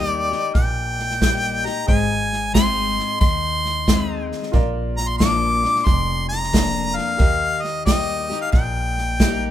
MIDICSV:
0, 0, Header, 1, 6, 480
1, 0, Start_track
1, 0, Key_signature, -3, "major"
1, 0, Tempo, 665188
1, 1352, Time_signature, 4, 2, 24, 8
1, 6861, End_track
2, 0, Start_track
2, 0, Title_t, "Harmonica"
2, 0, Program_c, 0, 22
2, 0, Note_on_c, 0, 75, 87
2, 44, Note_off_c, 0, 75, 0
2, 44, Note_on_c, 0, 74, 87
2, 366, Note_off_c, 0, 74, 0
2, 390, Note_on_c, 0, 79, 97
2, 1197, Note_on_c, 0, 82, 87
2, 1207, Note_off_c, 0, 79, 0
2, 1354, Note_off_c, 0, 82, 0
2, 1358, Note_on_c, 0, 80, 96
2, 1806, Note_off_c, 0, 80, 0
2, 1834, Note_on_c, 0, 84, 107
2, 2284, Note_off_c, 0, 84, 0
2, 2312, Note_on_c, 0, 84, 104
2, 3080, Note_off_c, 0, 84, 0
2, 3587, Note_on_c, 0, 82, 93
2, 3665, Note_on_c, 0, 84, 94
2, 3676, Note_off_c, 0, 82, 0
2, 3734, Note_off_c, 0, 84, 0
2, 3738, Note_on_c, 0, 86, 104
2, 4225, Note_on_c, 0, 84, 105
2, 4236, Note_off_c, 0, 86, 0
2, 4533, Note_off_c, 0, 84, 0
2, 4537, Note_on_c, 0, 82, 99
2, 5022, Note_on_c, 0, 77, 98
2, 5033, Note_off_c, 0, 82, 0
2, 5499, Note_on_c, 0, 75, 83
2, 5509, Note_off_c, 0, 77, 0
2, 5664, Note_off_c, 0, 75, 0
2, 5669, Note_on_c, 0, 75, 92
2, 6041, Note_off_c, 0, 75, 0
2, 6072, Note_on_c, 0, 77, 79
2, 6142, Note_off_c, 0, 77, 0
2, 6147, Note_on_c, 0, 79, 85
2, 6861, Note_off_c, 0, 79, 0
2, 6861, End_track
3, 0, Start_track
3, 0, Title_t, "Upright piano"
3, 0, Program_c, 1, 0
3, 0, Note_on_c, 1, 67, 56
3, 0, Note_on_c, 1, 70, 53
3, 0, Note_on_c, 1, 75, 66
3, 1313, Note_off_c, 1, 67, 0
3, 1317, Note_off_c, 1, 70, 0
3, 1323, Note_off_c, 1, 75, 0
3, 1347, Note_on_c, 1, 68, 62
3, 1356, Note_on_c, 1, 72, 54
3, 1363, Note_on_c, 1, 75, 63
3, 3241, Note_off_c, 1, 68, 0
3, 3245, Note_off_c, 1, 72, 0
3, 3248, Note_off_c, 1, 75, 0
3, 3261, Note_on_c, 1, 65, 72
3, 3269, Note_on_c, 1, 70, 69
3, 3280, Note_on_c, 1, 74, 83
3, 5157, Note_off_c, 1, 65, 0
3, 5162, Note_off_c, 1, 70, 0
3, 5167, Note_off_c, 1, 74, 0
3, 5175, Note_on_c, 1, 67, 59
3, 5185, Note_on_c, 1, 70, 57
3, 5195, Note_on_c, 1, 75, 66
3, 6861, Note_off_c, 1, 67, 0
3, 6861, Note_off_c, 1, 70, 0
3, 6861, Note_off_c, 1, 75, 0
3, 6861, End_track
4, 0, Start_track
4, 0, Title_t, "Steel-string acoustic guitar"
4, 0, Program_c, 2, 25
4, 0, Note_on_c, 2, 51, 84
4, 0, Note_on_c, 2, 55, 60
4, 0, Note_on_c, 2, 58, 64
4, 0, Note_on_c, 2, 63, 61
4, 0, Note_on_c, 2, 67, 67
4, 214, Note_off_c, 2, 55, 0
4, 216, Note_off_c, 2, 67, 0
4, 217, Note_off_c, 2, 58, 0
4, 218, Note_off_c, 2, 63, 0
4, 224, Note_on_c, 2, 67, 55
4, 238, Note_on_c, 2, 63, 46
4, 359, Note_off_c, 2, 51, 0
4, 383, Note_off_c, 2, 67, 0
4, 390, Note_off_c, 2, 63, 0
4, 399, Note_on_c, 2, 46, 83
4, 872, Note_on_c, 2, 55, 56
4, 876, Note_on_c, 2, 58, 54
4, 880, Note_on_c, 2, 63, 59
4, 886, Note_on_c, 2, 67, 61
4, 1176, Note_off_c, 2, 55, 0
4, 1178, Note_off_c, 2, 58, 0
4, 1180, Note_off_c, 2, 63, 0
4, 1183, Note_off_c, 2, 67, 0
4, 1192, Note_on_c, 2, 67, 54
4, 1204, Note_on_c, 2, 63, 41
4, 1322, Note_off_c, 2, 46, 0
4, 1347, Note_off_c, 2, 67, 0
4, 1353, Note_off_c, 2, 63, 0
4, 1353, Note_on_c, 2, 44, 86
4, 1827, Note_on_c, 2, 56, 55
4, 1833, Note_on_c, 2, 60, 59
4, 1837, Note_on_c, 2, 63, 62
4, 1841, Note_on_c, 2, 68, 65
4, 2280, Note_off_c, 2, 44, 0
4, 2293, Note_off_c, 2, 56, 0
4, 2296, Note_off_c, 2, 60, 0
4, 2298, Note_off_c, 2, 63, 0
4, 2300, Note_off_c, 2, 68, 0
4, 2315, Note_on_c, 2, 51, 83
4, 2797, Note_on_c, 2, 56, 54
4, 2800, Note_on_c, 2, 60, 63
4, 2808, Note_on_c, 2, 63, 65
4, 2808, Note_on_c, 2, 68, 61
4, 3241, Note_off_c, 2, 51, 0
4, 3258, Note_off_c, 2, 56, 0
4, 3259, Note_off_c, 2, 60, 0
4, 3263, Note_off_c, 2, 63, 0
4, 3264, Note_off_c, 2, 68, 0
4, 3271, Note_on_c, 2, 46, 81
4, 3748, Note_on_c, 2, 53, 63
4, 3754, Note_on_c, 2, 58, 63
4, 3755, Note_on_c, 2, 62, 62
4, 3763, Note_on_c, 2, 65, 60
4, 4054, Note_off_c, 2, 53, 0
4, 4054, Note_off_c, 2, 65, 0
4, 4057, Note_off_c, 2, 58, 0
4, 4057, Note_off_c, 2, 62, 0
4, 4063, Note_on_c, 2, 65, 53
4, 4074, Note_on_c, 2, 62, 48
4, 4199, Note_off_c, 2, 46, 0
4, 4223, Note_off_c, 2, 65, 0
4, 4226, Note_on_c, 2, 41, 80
4, 4228, Note_off_c, 2, 62, 0
4, 4706, Note_on_c, 2, 53, 55
4, 4712, Note_on_c, 2, 58, 59
4, 4718, Note_on_c, 2, 62, 63
4, 4720, Note_on_c, 2, 65, 61
4, 5156, Note_off_c, 2, 41, 0
4, 5173, Note_off_c, 2, 53, 0
4, 5176, Note_off_c, 2, 58, 0
4, 5179, Note_off_c, 2, 62, 0
4, 5180, Note_off_c, 2, 65, 0
4, 5188, Note_on_c, 2, 51, 84
4, 5669, Note_on_c, 2, 55, 58
4, 5674, Note_on_c, 2, 58, 58
4, 5679, Note_on_c, 2, 63, 59
4, 5685, Note_on_c, 2, 67, 67
4, 5975, Note_off_c, 2, 55, 0
4, 5976, Note_off_c, 2, 67, 0
4, 5977, Note_off_c, 2, 58, 0
4, 5980, Note_off_c, 2, 63, 0
4, 5985, Note_on_c, 2, 67, 62
4, 5999, Note_on_c, 2, 63, 44
4, 6118, Note_off_c, 2, 51, 0
4, 6144, Note_off_c, 2, 67, 0
4, 6151, Note_off_c, 2, 63, 0
4, 6151, Note_on_c, 2, 46, 84
4, 6638, Note_on_c, 2, 55, 56
4, 6642, Note_on_c, 2, 58, 57
4, 6647, Note_on_c, 2, 63, 69
4, 6653, Note_on_c, 2, 67, 58
4, 6861, Note_off_c, 2, 46, 0
4, 6861, Note_off_c, 2, 55, 0
4, 6861, Note_off_c, 2, 58, 0
4, 6861, Note_off_c, 2, 63, 0
4, 6861, Note_off_c, 2, 67, 0
4, 6861, End_track
5, 0, Start_track
5, 0, Title_t, "Upright bass"
5, 0, Program_c, 3, 32
5, 0, Note_on_c, 3, 39, 87
5, 228, Note_off_c, 3, 39, 0
5, 397, Note_on_c, 3, 34, 79
5, 1189, Note_off_c, 3, 34, 0
5, 1361, Note_on_c, 3, 32, 90
5, 2151, Note_off_c, 3, 32, 0
5, 2318, Note_on_c, 3, 39, 83
5, 3110, Note_off_c, 3, 39, 0
5, 3277, Note_on_c, 3, 34, 86
5, 4069, Note_off_c, 3, 34, 0
5, 4234, Note_on_c, 3, 29, 87
5, 5028, Note_off_c, 3, 29, 0
5, 5196, Note_on_c, 3, 39, 84
5, 5989, Note_off_c, 3, 39, 0
5, 6160, Note_on_c, 3, 34, 86
5, 6861, Note_off_c, 3, 34, 0
5, 6861, End_track
6, 0, Start_track
6, 0, Title_t, "Drums"
6, 233, Note_on_c, 9, 38, 32
6, 305, Note_off_c, 9, 38, 0
6, 396, Note_on_c, 9, 38, 33
6, 397, Note_on_c, 9, 36, 106
6, 468, Note_off_c, 9, 38, 0
6, 469, Note_off_c, 9, 36, 0
6, 716, Note_on_c, 9, 38, 31
6, 788, Note_off_c, 9, 38, 0
6, 800, Note_on_c, 9, 38, 33
6, 872, Note_off_c, 9, 38, 0
6, 879, Note_on_c, 9, 36, 80
6, 879, Note_on_c, 9, 38, 99
6, 879, Note_on_c, 9, 44, 74
6, 951, Note_off_c, 9, 36, 0
6, 952, Note_off_c, 9, 38, 0
6, 952, Note_off_c, 9, 44, 0
6, 1196, Note_on_c, 9, 38, 34
6, 1268, Note_off_c, 9, 38, 0
6, 1360, Note_on_c, 9, 36, 95
6, 1362, Note_on_c, 9, 38, 32
6, 1432, Note_off_c, 9, 36, 0
6, 1434, Note_off_c, 9, 38, 0
6, 1679, Note_on_c, 9, 38, 34
6, 1751, Note_off_c, 9, 38, 0
6, 1839, Note_on_c, 9, 36, 79
6, 1840, Note_on_c, 9, 38, 109
6, 1840, Note_on_c, 9, 44, 78
6, 1911, Note_off_c, 9, 36, 0
6, 1912, Note_off_c, 9, 38, 0
6, 1912, Note_off_c, 9, 44, 0
6, 2159, Note_on_c, 9, 38, 31
6, 2231, Note_off_c, 9, 38, 0
6, 2318, Note_on_c, 9, 36, 100
6, 2319, Note_on_c, 9, 38, 33
6, 2390, Note_off_c, 9, 36, 0
6, 2391, Note_off_c, 9, 38, 0
6, 2637, Note_on_c, 9, 38, 32
6, 2709, Note_off_c, 9, 38, 0
6, 2797, Note_on_c, 9, 36, 80
6, 2799, Note_on_c, 9, 38, 106
6, 2799, Note_on_c, 9, 44, 83
6, 2870, Note_off_c, 9, 36, 0
6, 2871, Note_off_c, 9, 38, 0
6, 2871, Note_off_c, 9, 44, 0
6, 3116, Note_on_c, 9, 38, 35
6, 3188, Note_off_c, 9, 38, 0
6, 3194, Note_on_c, 9, 38, 32
6, 3267, Note_off_c, 9, 38, 0
6, 3275, Note_on_c, 9, 36, 97
6, 3275, Note_on_c, 9, 38, 32
6, 3347, Note_off_c, 9, 36, 0
6, 3347, Note_off_c, 9, 38, 0
6, 3593, Note_on_c, 9, 38, 34
6, 3665, Note_off_c, 9, 38, 0
6, 3754, Note_on_c, 9, 36, 77
6, 3755, Note_on_c, 9, 38, 104
6, 3755, Note_on_c, 9, 44, 80
6, 3826, Note_off_c, 9, 36, 0
6, 3827, Note_off_c, 9, 38, 0
6, 3827, Note_off_c, 9, 44, 0
6, 4074, Note_on_c, 9, 38, 32
6, 4146, Note_off_c, 9, 38, 0
6, 4155, Note_on_c, 9, 38, 30
6, 4227, Note_off_c, 9, 38, 0
6, 4234, Note_on_c, 9, 36, 104
6, 4235, Note_on_c, 9, 38, 31
6, 4306, Note_off_c, 9, 36, 0
6, 4307, Note_off_c, 9, 38, 0
6, 4556, Note_on_c, 9, 38, 31
6, 4628, Note_off_c, 9, 38, 0
6, 4639, Note_on_c, 9, 38, 33
6, 4712, Note_off_c, 9, 38, 0
6, 4715, Note_on_c, 9, 36, 79
6, 4721, Note_on_c, 9, 38, 103
6, 4721, Note_on_c, 9, 44, 85
6, 4788, Note_off_c, 9, 36, 0
6, 4793, Note_off_c, 9, 38, 0
6, 4793, Note_off_c, 9, 44, 0
6, 5037, Note_on_c, 9, 38, 33
6, 5109, Note_off_c, 9, 38, 0
6, 5195, Note_on_c, 9, 36, 109
6, 5197, Note_on_c, 9, 38, 30
6, 5267, Note_off_c, 9, 36, 0
6, 5270, Note_off_c, 9, 38, 0
6, 5515, Note_on_c, 9, 38, 33
6, 5587, Note_off_c, 9, 38, 0
6, 5676, Note_on_c, 9, 36, 82
6, 5680, Note_on_c, 9, 38, 103
6, 5680, Note_on_c, 9, 44, 75
6, 5748, Note_off_c, 9, 36, 0
6, 5752, Note_off_c, 9, 38, 0
6, 5752, Note_off_c, 9, 44, 0
6, 6000, Note_on_c, 9, 38, 34
6, 6072, Note_off_c, 9, 38, 0
6, 6157, Note_on_c, 9, 36, 104
6, 6160, Note_on_c, 9, 38, 34
6, 6229, Note_off_c, 9, 36, 0
6, 6232, Note_off_c, 9, 38, 0
6, 6480, Note_on_c, 9, 38, 33
6, 6552, Note_off_c, 9, 38, 0
6, 6638, Note_on_c, 9, 36, 83
6, 6639, Note_on_c, 9, 38, 107
6, 6639, Note_on_c, 9, 44, 78
6, 6710, Note_off_c, 9, 36, 0
6, 6712, Note_off_c, 9, 38, 0
6, 6712, Note_off_c, 9, 44, 0
6, 6861, End_track
0, 0, End_of_file